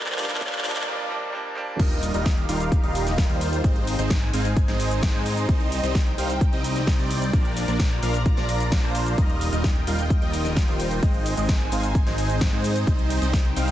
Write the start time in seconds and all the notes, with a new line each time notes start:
Already playing: A#1 F3 G3 A#3 D4 F4 A#4 D5 F5, riser
0.01 clap
0.06 clap, closed hi-hat
0.12 clap
0.17 A#1 F3 G3 A#3 D4 F4 A#4 D5, clap, open hi-hat
0.24 clap
0.29 clap, closed hi-hat
0.35 clap
0.40 A#1 F3 G3 A#3 D4 F4 A#4 D5, kick, clap, closed hi-hat
0.47 clap
0.53 clap, closed hi-hat
0.58 clap
0.63 A#1 F3 G3 A#3 D4 F4 A#4 D5, clap, open hi-hat
0.70 clap
0.76 clap, closed hi-hat
0.81 clap
0.86 F3 G3 A#3 D4
1.09 F3 G3 A#3 D4
1.32 F3 G3 A#3 D4
1.55 F3 G3 A#3 D4
1.79 D#1 G3 D#4 F4 G4 A#4 D#5 F5, kick, closed hi-hat, crash, cabasa
1.91 closed hi-hat
2.03 open hi-hat, cabasa
2.14 D#1 G3 D#4 F4 A#4 D#5, closed hi-hat, cabasa
2.26 kick, snare, closed hi-hat, cabasa
2.37 closed hi-hat
2.49 D#1 G3 D#4 F4 A#4 F5, open hi-hat, cabasa
2.60 closed hi-hat, cabasa
2.72 kick, closed hi-hat, cabasa
2.83 D#1 G3 D#4 F4 A#4 D#5, closed hi-hat
2.95 open hi-hat, cabasa
3.07 snare, closed hi-hat, cabasa
3.18 kick, snare, closed hi-hat, cabasa
3.29 D#2 G3 D#4 F4 A#4 C5, closed hi-hat
3.41 open hi-hat, cabasa
3.53 closed hi-hat, cabasa
3.64 G#1 G#3 C4 D#4 C5 D#5 G#5, kick, closed hi-hat, cabasa
3.76 closed hi-hat
3.87 open hi-hat, cabasa
3.99 G#1 G#3 C4 D#4 C5 D#5, closed hi-hat, cabasa
4.10 kick, snare, closed hi-hat, cabasa
4.22 closed hi-hat
4.33 G#1 G#3 C4 D#4 C5 F5, open hi-hat, cabasa
4.45 closed hi-hat, cabasa
4.57 kick, closed hi-hat, cabasa
4.68 G#1 G#3 C4 D#4 C5 D#5, snare, closed hi-hat
4.80 open hi-hat, cabasa
4.91 closed hi-hat, cabasa
5.03 kick, snare, closed hi-hat, cabasa
5.14 G#2 G#3 C4 D#4 C5 D#5, closed hi-hat
5.26 open hi-hat, cabasa
5.37 closed hi-hat, cabasa
5.49 C2 G5, kick, closed hi-hat, cabasa
5.61 closed hi-hat
5.72 open hi-hat, cabasa
5.83 C2 G3 C4 D#4 C5 D#5, closed hi-hat, cabasa
5.95 kick, snare, closed hi-hat, cabasa
6.07 closed hi-hat
6.18 C2 G3 C4 D#4 C5 F5, open hi-hat, cabasa
6.30 closed hi-hat, cabasa
6.41 kick, closed hi-hat, cabasa
6.53 C2 G3 C4 D#4 C5 D#5, closed hi-hat
6.64 open hi-hat, cabasa
6.76 snare, closed hi-hat, cabasa
6.87 kick, snare, closed hi-hat, cabasa
6.99 C2 G3 C4 D#4 C5 D5, closed hi-hat
7.11 open hi-hat, cabasa
7.22 closed hi-hat, cabasa
7.33 A#1 F3 A#3 D4 F4 A#4 D5 A#5, kick, closed hi-hat, cabasa
7.45 closed hi-hat
7.57 open hi-hat, cabasa
7.68 A#1 F3 A#3 D4 A#4 D5, closed hi-hat, cabasa
7.80 kick, snare, closed hi-hat, cabasa
7.91 closed hi-hat
8.02 A#1 F3 A#3 D4 A#4 F5, open hi-hat, cabasa
8.14 closed hi-hat, cabasa
8.26 kick, closed hi-hat, cabasa
8.37 A#1 F3 A#3 D4 A#4 D5, snare, closed hi-hat
8.49 open hi-hat, cabasa
8.60 closed hi-hat, cabasa
8.72 kick, snare, closed hi-hat, cabasa
8.83 A#1 F3 A#3 D4 A#4 C5, closed hi-hat
8.95 open hi-hat, cabasa
9.06 closed hi-hat, cabasa
9.18 D#1 G3 D#4 F4 A#4 D#5 G5, kick, closed hi-hat, cabasa
9.30 closed hi-hat
9.41 open hi-hat, cabasa
9.53 D#1 G3 D#4 F4 A#4 D#5, closed hi-hat, cabasa
9.64 kick, snare, closed hi-hat, cabasa
9.76 closed hi-hat
9.87 D#1 G3 D#4 F4 A#4 F5, open hi-hat, cabasa
9.99 closed hi-hat, cabasa
10.10 kick, closed hi-hat, cabasa
10.22 D#1 G3 D#4 F4 A#4 D#5, closed hi-hat
10.33 open hi-hat, cabasa
10.45 snare, closed hi-hat, cabasa
10.56 kick, snare, closed hi-hat, cabasa
10.68 D#1 G3 D#4 F4 A#4 C5, closed hi-hat
10.80 open hi-hat, cabasa
10.91 closed hi-hat, cabasa
11.03 G#1 G#3 C4 D#4 C5 D#5 G#5, kick, closed hi-hat, cabasa
11.14 closed hi-hat
11.26 open hi-hat, cabasa
11.37 G#1 G#3 C4 D#4 C5 D#5, closed hi-hat, cabasa
11.49 kick, snare, closed hi-hat, cabasa
11.60 closed hi-hat
11.72 G#1 G#3 C4 D#4 C5 F5, open hi-hat, cabasa
11.83 closed hi-hat, cabasa
11.95 kick, closed hi-hat, cabasa
12.06 G#1 G#3 C4 D#4 C5 D#5, snare, closed hi-hat
12.18 open hi-hat, cabasa
12.30 closed hi-hat, cabasa
12.41 kick, snare, closed hi-hat, cabasa
12.53 G#2 G#3 C4 D#4 C5 D#5, closed hi-hat
12.64 open hi-hat, cabasa
12.76 closed hi-hat, cabasa
12.87 C2 G3 C4 D#4 C5 D#5 G5, kick, closed hi-hat, cabasa
12.99 closed hi-hat
13.10 open hi-hat, cabasa
13.22 C2 G3 C4 D#4 C5 D#5, closed hi-hat, cabasa
13.33 kick, snare, closed hi-hat, cabasa
13.45 closed hi-hat
13.56 C2 G3 C4 D#4 C5 F5, open hi-hat, cabasa
13.68 closed hi-hat